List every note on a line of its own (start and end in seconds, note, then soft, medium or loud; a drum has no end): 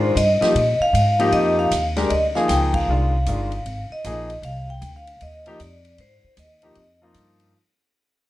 0.00 0.15 G#2 medium
0.00 0.14 D#3 medium
0.00 0.14 G#3 medium
0.00 0.14 D4 medium
0.00 0.14 F4 medium
0.00 0.19 C5 medium
0.16 0.39 G2 medium
0.16 0.83 D#5 medium
0.16 hi-hat pedal soft
0.16 ride medium
0.41 0.54 F3 medium
0.41 0.54 A#3 soft
0.41 0.54 D#4 soft
0.41 0.54 G4 medium
0.41 muted upright bass stroke soft
0.41 snare soft
0.41 ride soft
0.55 0.78 A#2 medium
0.55 ride medium
0.80 1.35 F5 medium
0.80 muted upright bass stroke soft
0.93 1.31 G#2 medium
0.93 hi-hat pedal medium
0.93 ride medium
1.19 1.69 F3 medium
1.19 1.69 A#3 medium
1.19 1.69 D#4 medium
1.19 1.70 G4 medium
1.19 ride soft
1.32 1.70 F2 medium
1.32 1.57 D#5 medium
1.32 ride medium
1.59 1.83 F5 medium
1.71 2.09 D#2 medium
1.71 hi-hat pedal medium
1.71 ride medium
1.97 2.09 G#3 medium
1.97 2.09 D4 medium
1.97 2.09 G4 medium
1.97 2.10 A#4 medium
1.97 2.10 D5 medium
1.97 snare soft
1.97 ride soft
2.10 2.48 D2 medium
2.10 2.21 D#5 medium
2.10 ride medium
2.35 2.85 F3 medium
2.35 2.86 A#3 medium
2.35 2.86 D#4 medium
2.35 2.86 G#4 medium
2.35 2.48 F5 medium
2.35 snare soft
2.48 2.87 C#2 medium
2.48 2.75 G5 medium
2.48 snare soft
2.48 hi-hat pedal medium
2.48 ride medium
2.74 3.87 F5 medium
2.74 kick medium
2.74 ride medium
2.88 3.26 C2 medium
2.88 3.11 D#3 medium
2.88 3.11 G#3 medium
2.88 3.12 D4 medium
2.88 3.12 F4 medium
3.26 3.64 G1 medium
3.26 3.50 D#3 medium
3.26 3.50 G#3 medium
3.26 3.50 D4 medium
3.26 3.50 F4 medium
3.26 hi-hat pedal medium
3.26 ride medium
3.52 ride soft
3.66 3.89 G#1 medium
3.66 ride medium
3.90 4.40 D#5 medium
3.90 muted upright bass stroke soft
4.04 4.41 A#1 medium
4.04 4.27 F3 medium
4.04 4.27 A#3 medium
4.04 4.27 D#4 medium
4.04 4.28 G#4 medium
4.04 hi-hat pedal medium
4.04 ride medium
4.30 ride soft
4.42 4.80 C2 medium
4.42 4.71 F5 medium
4.42 ride medium
4.70 4.94 G5 medium
4.81 5.19 D2 medium
4.81 hi-hat pedal medium
4.81 ride medium
4.96 5.20 F5 medium
5.07 ride soft
5.21 5.59 D#2 medium
5.21 5.58 D#5 medium
5.21 ride medium
5.46 5.59 F3 medium
5.46 5.59 A#3 medium
5.46 5.59 D#4 medium
5.46 5.59 G4 medium
5.46 ride soft
5.60 5.97 F2 medium
5.60 5.96 D5 medium
5.60 hi-hat pedal medium
5.60 ride medium
5.85 ride soft
5.98 6.21 G#2 medium
5.98 6.39 C5 medium
5.98 ride medium
6.24 muted upright bass stroke soft
6.37 6.75 D#2 medium
6.37 6.98 D#5 medium
6.37 hi-hat pedal medium
6.37 ride medium
6.62 6.75 F3 medium
6.62 6.75 A#3 medium
6.62 6.75 D#4 medium
6.62 6.75 G4 medium
6.62 ride soft
6.75 7.13 F2 medium
6.75 ride medium
7.02 7.51 F3 medium
7.02 7.51 A#3 medium
7.02 7.51 D#4 medium
7.02 7.52 F4 medium
7.14 7.52 G2 medium
7.14 hi-hat pedal medium
7.14 ride medium
7.40 ride soft